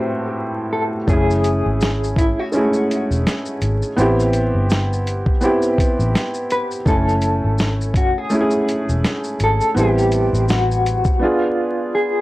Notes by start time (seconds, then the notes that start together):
Already playing: A2 A3 B3 C4 E4 F#4 G4 C5
0.73 A4
1.07 F#1 A3 C#4 E4 G#4, kick, shaker
1.12 G#4
1.31 shaker
1.44 closed hi-hat, shaker
1.66 G#1
1.81 snare, shaker
2.04 shaker
2.16 E4, kick, closed hi-hat, shaker
2.39 F#4
2.52 G#3 C#4 E4, shaker
2.56 A3 G#4
2.74 shaker
2.91 closed hi-hat, shaker
3.11 E1, shaker
3.27 snare, shaker
3.46 shaker
3.61 G#1, closed hi-hat, shaker
3.82 shaker
3.96 A1 B3 C4 E4, shaker
4.01 G4
4.20 shaker
4.33 closed hi-hat, shaker
4.55 G1
4.70 snare, shaker
4.93 shaker
5.07 closed hi-hat, shaker
5.26 kick
5.41 B3 C4 E4, shaker
5.45 G4
5.62 shaker
5.78 kick, closed hi-hat, shaker
5.99 A1, shaker
6.15 snare, shaker
6.34 shaker
6.51 B4, closed hi-hat, shaker
6.71 shaker
6.86 F#1 A3 C#4 E4 A4, kick, shaker
6.90 G#5
7.09 shaker
7.22 closed hi-hat, shaker
7.44 G#1
7.58 snare, shaker
7.81 shaker
7.94 F#4, kick, closed hi-hat, shaker
8.18 G#4
8.30 A3 C#4 E4, shaker
8.34 G#4
8.41 G#4
8.51 shaker
8.69 closed hi-hat, shaker
8.89 E1, shaker
9.04 snare, shaker
9.24 shaker
9.40 G#1 A4, closed hi-hat, shaker
9.61 shaker
9.75 A1 G3 B3 C4 E4 G4, shaker
9.98 shaker
10.12 closed hi-hat, shaker
10.33 A1, shaker
10.49 F#4, snare, shaker
10.71 shaker
10.86 closed hi-hat, shaker
11.05 kick, shaker
11.19 B3 D4 F4
11.24 G#4
11.95 G#4